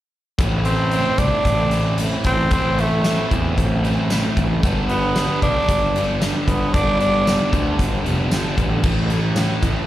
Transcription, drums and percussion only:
0.38 kick medium
0.38 closed hi-hat medium
0.65 closed hi-hat medium
0.91 closed hi-hat medium
1.18 kick medium
1.18 closed hi-hat medium
1.45 kick medium
1.45 closed hi-hat medium
1.71 closed hi-hat medium
1.98 closed hi-hat medium
2.24 kick medium
2.24 closed hi-hat medium
2.51 kick loud
2.51 closed hi-hat medium
2.78 closed hi-hat medium
3.04 snare medium
3.04 closed hi-hat medium
3.04 tambourine medium
3.31 kick medium
3.31 closed hi-hat medium
3.58 kick medium
3.58 closed hi-hat medium
3.85 closed hi-hat soft
4.10 snare medium
4.10 closed hi-hat medium
4.10 tambourine loud
4.37 kick medium
4.37 closed hi-hat medium
4.63 kick loud
4.63 closed hi-hat medium
4.89 closed hi-hat soft
5.16 snare loud
5.16 closed hi-hat medium
5.16 tambourine medium
5.42 kick medium
5.42 closed hi-hat medium
5.69 kick medium
5.69 closed hi-hat medium
5.96 closed hi-hat medium
6.22 snare loud
6.22 closed hi-hat medium
6.22 tambourine loud
6.48 kick medium
6.48 closed hi-hat medium
6.74 kick loud
6.74 closed hi-hat medium
7.00 closed hi-hat medium
7.27 snare medium
7.27 closed hi-hat medium
7.27 tambourine loud
7.53 kick medium
7.53 closed hi-hat medium
7.79 kick medium
7.79 closed hi-hat medium
8.06 closed hi-hat soft
8.31 snare loud
8.31 closed hi-hat medium
8.31 tambourine loud
8.58 kick medium
8.58 closed hi-hat medium
8.83 kick loud
8.83 crash medium
9.10 closed hi-hat medium
9.36 snare loud
9.36 closed hi-hat medium
9.36 tambourine loud
9.63 kick medium
9.63 closed hi-hat medium

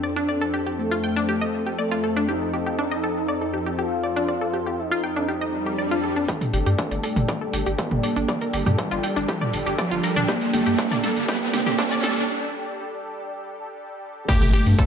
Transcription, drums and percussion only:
6.28 kick loud
6.28 closed hi-hat soft
6.28 mid tom soft
6.41 closed hi-hat soft
6.41 mid tom medium
6.54 open hi-hat loud
6.66 closed hi-hat soft
6.78 kick loud
6.78 closed hi-hat soft
6.78 mid tom soft
6.91 closed hi-hat soft
7.03 open hi-hat medium
7.16 closed hi-hat soft
7.16 mid tom medium
7.28 kick loud
7.28 closed hi-hat soft
7.28 mid tom soft
7.53 open hi-hat loud
7.66 closed hi-hat soft
7.78 kick loud
7.78 closed hi-hat soft
7.78 mid tom medium
7.91 mid tom medium
8.03 open hi-hat loud
8.16 closed hi-hat soft
8.28 kick loud
8.28 closed hi-hat soft
8.28 mid tom medium
8.41 closed hi-hat soft
8.53 open hi-hat loud
8.66 closed hi-hat soft
8.66 mid tom medium
8.78 kick loud
8.78 closed hi-hat soft
8.78 mid tom medium
8.91 closed hi-hat soft
9.03 open hi-hat loud
9.16 closed hi-hat soft
9.29 kick loud
9.29 closed hi-hat soft
9.29 mid tom medium
9.41 mid tom medium
9.54 open hi-hat loud
9.66 closed hi-hat soft
9.78 kick loud
9.78 open hi-hat medium
9.78 mid tom medium
10.04 open hi-hat loud
10.16 closed hi-hat soft
10.16 mid tom medium
10.28 kick loud
10.28 closed hi-hat soft
10.28 mid tom medium
10.41 closed hi-hat soft
10.54 open hi-hat loud
10.54 mid tom medium
10.66 closed hi-hat soft
10.79 kick loud
10.79 closed hi-hat soft
10.79 mid tom medium
10.91 closed hi-hat soft
10.91 mid tom medium
11.04 open hi-hat loud
11.04 mid tom medium
11.16 closed hi-hat soft
11.29 kick loud
11.29 closed hi-hat soft
11.29 mid tom medium
11.54 open hi-hat loud
11.54 mid tom medium
11.66 closed hi-hat soft
11.66 mid tom medium
11.79 kick loud
11.79 closed hi-hat soft
11.79 mid tom medium
12.04 open hi-hat loud
12.04 mid tom medium
12.16 closed hi-hat soft
14.29 kick loud
14.29 closed hi-hat soft
14.29 crash loud
14.41 closed hi-hat soft
14.41 mid tom medium
14.54 open hi-hat loud
14.66 closed hi-hat soft
14.79 kick loud
14.79 closed hi-hat soft

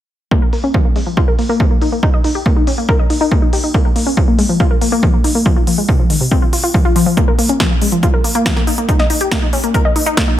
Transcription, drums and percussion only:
0.31 kick loud
0.53 open hi-hat medium
0.74 kick loud
0.96 open hi-hat medium
1.17 kick loud
1.39 open hi-hat loud
1.60 kick loud
1.82 open hi-hat medium
2.03 kick loud
2.24 open hi-hat loud
2.46 kick loud
2.67 open hi-hat loud
2.89 kick loud
3.10 open hi-hat loud
3.31 kick loud
3.53 open hi-hat medium
3.74 kick loud
3.96 open hi-hat loud
4.17 kick loud
4.39 open hi-hat medium
4.60 kick loud
4.81 open hi-hat loud
5.03 kick loud
5.24 open hi-hat loud
5.46 kick loud
5.67 open hi-hat loud
5.89 kick loud
6.10 open hi-hat loud
6.31 kick loud
6.53 open hi-hat loud
6.74 kick loud
6.96 open hi-hat loud
7.17 kick loud
7.17 closed hi-hat medium
7.39 open hi-hat loud
7.49 closed hi-hat medium
7.60 kick loud
7.60 snare loud
7.60 closed hi-hat medium
7.82 open hi-hat loud
7.92 closed hi-hat medium
8.03 kick loud
8.03 closed hi-hat medium
8.24 open hi-hat loud
8.35 closed hi-hat medium
8.46 kick loud
8.46 snare loud
8.46 closed hi-hat medium
8.57 snare soft
8.67 open hi-hat medium
8.78 closed hi-hat medium
8.89 kick loud
8.89 closed hi-hat medium
8.99 snare soft
9.10 open hi-hat medium
9.21 closed hi-hat medium
9.31 kick loud
9.31 snare loud
9.31 closed hi-hat medium
9.53 open hi-hat medium
9.64 closed hi-hat medium
9.74 kick loud
9.74 closed hi-hat medium
9.96 open hi-hat loud
10.07 closed hi-hat medium
10.17 kick loud
10.17 snare loud
10.17 closed hi-hat medium

